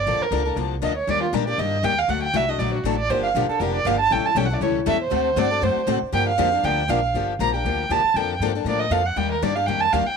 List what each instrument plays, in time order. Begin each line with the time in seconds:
Already playing: violin D5
0.06 upright bass A#1, steel-string acoustic guitar D3 F3 A#3 D4 A4
0.20 violin A#4, muted upright bass stroke
0.31 upright bass C#2, steel-string acoustic guitar D3 F3 A#3 D4 A4
0.45 steel-string acoustic guitar A#3 D4 A4
0.56 upright bass C2, steel-string acoustic guitar D3 F3 A#3 D4 A4
0.82 upright bass D2, steel-string acoustic guitar D3 F3 A#3 D4 A4, violin D#5
0.97 violin C#5
1.07 upright bass D#2, steel-string acoustic guitar D#3 G3 A#3 D4 G4, violin D5
1.23 violin F4
1.33 upright bass A#2, steel-string acoustic guitar D#3 G3 A#3 D4 G4, violin A#4
1.47 steel-string acoustic guitar A#3 D4 G4, violin D5
1.58 upright bass G2, steel-string acoustic guitar D#3 G3 A#3 D4 G4, violin D#5
1.83 upright bass D#2, steel-string acoustic guitar D#3 G3 A#3 D4 G4, violin G5
1.98 violin F5
2.08 upright bass D2, steel-string acoustic guitar D3 F#3 A3 D4 F#4, violin F#5
2.23 violin G5
2.34 upright bass C2, steel-string acoustic guitar D3 F#3 A3 D4 F#4, violin E5
2.48 steel-string acoustic guitar A3 D4 F#4, violin D#5
2.58 upright bass A#1, steel-string acoustic guitar D3 F#3 A3 D4 F#4, violin D5
2.74 violin F#4
2.84 upright bass A1, steel-string acoustic guitar D3 F#3 A3 D4 F#4, violin A4
2.98 violin D5
3.09 upright bass G1, steel-string acoustic guitar D3 F3 A#3 D4 G4, violin C5
3.23 violin F5
3.35 upright bass A#1, steel-string acoustic guitar D3 F3 A#3 D4 G4
3.49 steel-string acoustic guitar A#3 D4, violin A4, muted upright bass stroke
3.60 upright bass F1, steel-string acoustic guitar D3 F3 A#3 D4 G4, violin A#4
3.75 violin D5
3.85 upright bass G1, steel-string acoustic guitar D3 F3 A#3 D4 G4, violin F5
4.00 violin A5
4.11 upright bass A1, steel-string acoustic guitar E3 G3 C#4 E4 A4, violin G5
4.24 violin A5, muted upright bass stroke
4.35 upright bass B1, steel-string acoustic guitar E3 G3 C#4 E4 A4, violin G5
4.45 violin F#5
4.50 steel-string acoustic guitar C#4 E4 A4, violin D5
4.61 upright bass C#2, steel-string acoustic guitar E3 G3 C#4 E4 A4, violin C#5
4.86 upright bass E2, steel-string acoustic guitar E3 G3 C#4 E4 A4, violin E5
5.02 violin C5
5.11 upright bass D2, steel-string acoustic guitar D3 A3 C4 F#4 A4
5.36 upright bass G2, steel-string acoustic guitar D3 A3 C4 F#4 A4, violin D5
5.51 steel-string acoustic guitar C4 F#4 A4
5.62 upright bass F#2, steel-string acoustic guitar D3 A3 C4 F#4 A4, violin C5
5.76 muted upright bass stroke
5.87 upright bass A2, steel-string acoustic guitar D3 A3 C4 F#4 A4
6.02 muted upright bass stroke
6.12 upright bass G2, steel-string acoustic guitar D3 F3 A#3 D4 G4, violin G5
6.28 violin F5
6.38 upright bass F2, steel-string acoustic guitar D3 F3 A#3 D4 G4
6.52 steel-string acoustic guitar A#3 D4 G4
6.63 upright bass D2, steel-string acoustic guitar D3 F3 A#3 D4 G4, violin G5
6.89 upright bass A#1, steel-string acoustic guitar D3 F3 A#3 D4 G4, violin F5
7.14 upright bass G1, steel-string acoustic guitar D3 F3 A#3 D4 G4
7.39 upright bass A#1, steel-string acoustic guitar D3 F3 A#3 D4 G4, violin A#5
7.54 steel-string acoustic guitar A#3 D4 G4, violin G5
7.65 upright bass D2, steel-string acoustic guitar D3 F3 A#3 D4 G4
7.89 upright bass D#2, steel-string acoustic guitar D3 F3 A#3 D4 G4, violin A5
8.04 muted upright bass stroke
8.14 upright bass F2, steel-string acoustic guitar D3 F3 A#3 D4 A4, violin G5
8.40 upright bass G2, steel-string acoustic guitar D3 F3 A#3 D4 A4
8.55 steel-string acoustic guitar A#3 D4 A4
8.64 upright bass A2, steel-string acoustic guitar D3 F3 A#3 D4 A4, violin D5
8.79 violin D#5
8.90 upright bass F2, steel-string acoustic guitar D3 F3 A#3 D4 A4, violin F5
9.06 violin F#5
9.16 upright bass D#2, steel-string acoustic guitar D#3 G3 A#3 D4 G4, violin G5
9.32 violin A#4
9.42 upright bass G2, steel-string acoustic guitar D#3 G3 A#3 D4 G4, violin D5
9.55 steel-string acoustic guitar A#3 D4 G4, violin F5
9.66 upright bass F2, steel-string acoustic guitar D#3 G3 A#3 D4 G4, violin G5
9.80 violin A5
9.93 upright bass D#2, steel-string acoustic guitar D#3 G3 A#3 D4 G4, violin F5
10.06 violin G5, muted upright bass stroke